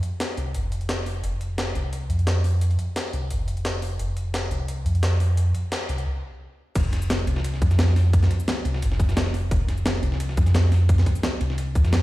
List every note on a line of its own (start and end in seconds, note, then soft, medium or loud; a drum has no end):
0.03 closed hi-hat medium
0.20 snare loud
0.20 closed hi-hat medium
0.37 0.56 C2 loud
0.37 closed hi-hat medium
0.54 1.22 F1 medium
0.54 closed hi-hat medium
0.72 closed hi-hat medium
0.81 closed hi-hat soft
0.89 snare loud
0.89 closed hi-hat medium
1.06 open hi-hat medium
1.23 1.74 F1 loud
1.23 closed hi-hat medium
1.41 closed hi-hat medium
1.58 snare loud
1.58 closed hi-hat medium
1.75 2.09 C2 loud
1.75 closed hi-hat medium
1.93 closed hi-hat medium
2.10 2.77 F2 loud
2.10 closed hi-hat medium
2.19 closed hi-hat soft
2.27 snare loud
2.27 closed hi-hat medium
2.44 open hi-hat medium
2.61 closed hi-hat medium
2.71 closed hi-hat soft
2.79 closed hi-hat medium
2.96 snare loud
2.96 closed hi-hat medium
3.13 3.32 C2 loud
3.13 closed hi-hat medium
3.30 3.98 F1 medium
3.30 closed hi-hat medium
3.48 closed hi-hat medium
3.57 closed hi-hat soft
3.65 snare loud
3.65 closed hi-hat medium
3.82 open hi-hat medium
3.99 4.50 F1 loud
3.99 closed hi-hat medium
4.17 closed hi-hat medium
4.34 snare loud
4.34 closed hi-hat medium
4.51 4.84 C2 loud
4.51 closed hi-hat medium
4.68 closed hi-hat medium
4.85 5.53 F2 loud
4.85 closed hi-hat medium
4.95 closed hi-hat soft
5.03 snare loud
5.03 closed hi-hat medium
5.20 open hi-hat medium
5.37 closed hi-hat medium
5.55 closed hi-hat medium
5.72 snare loud
5.72 closed hi-hat medium
5.89 6.06 C2 loud
5.89 closed hi-hat medium
5.98 closed hi-hat soft
6.75 7.26 F1 loud
6.75 kick loud
6.75 closed hi-hat loud
6.75 crash loud
6.75 ride medium
6.75 shaker medium
6.93 snare soft
6.93 closed hi-hat medium
6.93 ride medium
7.02 shaker medium
7.10 snare loud
7.10 closed hi-hat loud
7.10 ride medium
7.10 shaker medium
7.19 ride soft
7.27 7.60 C2 loud
7.27 closed hi-hat medium
7.27 ride medium
7.36 snare medium
7.44 closed hi-hat loud
7.44 ride medium
7.44 shaker medium
7.54 snare soft
7.62 8.29 F2 loud
7.62 kick loud
7.62 closed hi-hat medium
7.62 ride medium
7.62 shaker medium
7.71 snare soft
7.71 closed hi-hat soft
7.71 shaker soft
7.79 snare loud
7.79 closed hi-hat loud
7.79 open hi-hat medium
7.79 shaker medium
7.88 snare medium
7.96 snare soft
7.96 open hi-hat medium
7.96 ride medium
8.13 kick loud
8.13 closed hi-hat loud
8.13 ride medium
8.13 shaker medium
8.23 snare soft
8.23 closed hi-hat soft
8.31 closed hi-hat medium
8.31 ride medium
8.40 shaker medium
8.48 snare loud
8.48 closed hi-hat loud
8.48 ride medium
8.48 shaker soft
8.65 8.84 C2 loud
8.65 closed hi-hat medium
8.65 ride medium
8.74 snare medium
8.82 9.50 F1 medium
8.82 closed hi-hat loud
8.82 ride medium
8.82 shaker medium
8.92 snare medium
8.99 kick loud
8.99 closed hi-hat medium
8.99 ride medium
8.99 shaker medium
9.09 snare medium
9.09 closed hi-hat soft
9.09 shaker soft
9.17 snare loud
9.17 closed hi-hat loud
9.17 ride medium
9.17 shaker medium
9.26 snare medium
9.34 open hi-hat medium
9.34 ride medium
9.34 shaker soft
9.51 10.02 F1 loud
9.51 kick loud
9.51 closed hi-hat loud
9.51 ride medium
9.51 shaker soft
9.69 snare soft
9.69 closed hi-hat medium
9.69 ride medium
9.78 shaker medium
9.86 snare loud
9.86 closed hi-hat medium
9.86 ride medium
9.86 shaker soft
9.95 ride soft
10.03 10.36 C2 loud
10.03 closed hi-hat medium
10.03 ride medium
10.12 snare medium
10.20 closed hi-hat loud
10.20 ride medium
10.20 shaker soft
10.29 snare soft
10.37 11.05 F2 loud
10.37 kick loud
10.37 closed hi-hat medium
10.37 ride medium
10.37 shaker medium
10.46 snare soft
10.46 closed hi-hat soft
10.46 shaker soft
10.54 snare loud
10.54 closed hi-hat loud
10.54 open hi-hat medium
10.54 shaker soft
10.64 snare soft
10.72 snare soft
10.72 open hi-hat medium
10.72 ride medium
10.89 kick loud
10.89 closed hi-hat medium
10.89 ride medium
10.89 shaker soft
10.98 snare soft
10.98 closed hi-hat soft
11.06 kick medium
11.06 closed hi-hat medium
11.06 ride medium
11.16 shaker medium
11.23 snare loud
11.23 closed hi-hat medium
11.23 ride medium
11.23 shaker soft
11.41 11.77 C2 loud
11.41 closed hi-hat medium
11.41 ride medium
11.50 snare medium
11.58 closed hi-hat medium
11.58 ride medium
11.58 shaker soft
11.75 12.02 F2 medium
11.75 kick loud
11.75 closed hi-hat medium
11.75 ride medium
11.75 shaker medium
11.85 snare medium
11.85 closed hi-hat soft
11.85 shaker soft
11.93 snare loud
11.93 closed hi-hat medium
11.93 ride medium
11.93 shaker soft